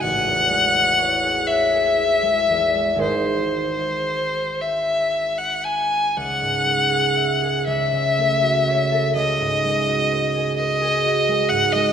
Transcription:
X:1
M:6/8
L:1/16
Q:3/8=40
K:G#phr
V:1 name="Violin"
f6 e6 | ^B6 e3 f g2 | f6 e6 | d6 d4 f d |]
V:2 name="Harp"
[A,,,G,G] E,, G, E c G c G E G, E,, G, | [G,,,G,Gd]12 | C,, G,, G, G e G C,, C, A, F c A | C,, G,, G, F ^B G B G F G, G,, G, |]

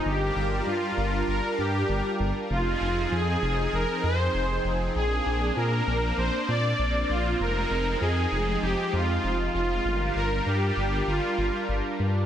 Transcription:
X:1
M:4/4
L:1/8
Q:1/4=98
K:Fdor
V:1 name="Supersaw synth"
G2 F2 B G2 z | F2 A2 B c2 z | A2 B2 c d2 F | B2 A2 G F2 F- |
F B G2 F2 z2 |]
V:2 name="Analog synth pad"
[G,DFB]8 | [F,CEA]8 | [B,D]8 | [F,A,E]8 |
[G,DFB]8 |]
V:3 name="Detuned saw bass" clef=bass
G,,, G,,, G,, G,,, G,,, G,, G,,, G,,, | F,,, F,,, F,, F,,, F,,, F,, F,,, F,,, | B,,, B,,, B,, B,,, B,,, B,, B,,, B,,, | F,,, F,,, F,, F,,, F,,, F,, F,,, F,,, |
G,,, G,,, G,, G,,, G,,, G,,, G,,, G,, |]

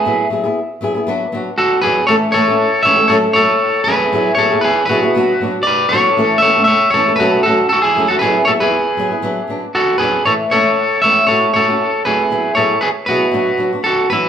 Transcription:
X:1
M:4/4
L:1/16
Q:"Swing 16ths" 1/4=117
K:A
V:1 name="Clean electric guitar"
[GB]2 z8 z2 [FA]2 [GB]2 | [Ac]2 [Ac]4 [ce]2 [Ac]2 [Ac]4 [GB]2- | [GB]2 [Ac]2 [GB]2 [FB]6 [Bd]2 [Ac]2- | [Ac]2 [ce]2 [ce]2 [Ac]2 [FB]2 [FA]2 [FA] [EG]2 [FA] |
[GB]2 [Ac] [GB]8 z [FA]2 [GB]2 | [Ac]2 [Ac]4 [ce]2 [Ac]2 [Ac]4 [GB]2- | [GB]2 [Ac]2 [GB]2 [FB]6 [FA]2 [EB]2 |]
V:2 name="Nylon-string guitar"
[F,B,EG] z [F,B,EG] [B,EG] z2 [F,B,EG] [B,EG] [F,B,DF] z [F,B,DF] z3 [F,B,F] z | [E,A,CA] z [E,A,A] [A,CA] z2 [E,A,CA] [A,CA] [F,A,CA] z [F,A,A] z3 [F,A,CA] z | [F,B,EG] z [F,B,EG] [B,EG] z2 [F,B,EG] [B,EG] [F,B,DF] z [F,B,DF] z3 [F,B,DF] z | [E,A,CA] z [E,A,CA] [A,CA] z2 [E,A,CA] [A,A] [F,A,CA] z [F,A,CA] z3 [F,A,CA] z |
[F,B,EG] z [F,B,EG] [B,EG] z2 [F,B,G] [B,EG] [F,B,D] z [F,B,D] z3 [F,B,D] z | [E,A,] z [E,A,C] z3 [E,A,C] z [A,F] z [A,CF] [CF] z2 [A,F] z | [F,B,E] z [F,B,EG] z3 [F,B,EG] z [F,B,DF] z [F,B,DF] [DF] z2 [F,B,DF] z |]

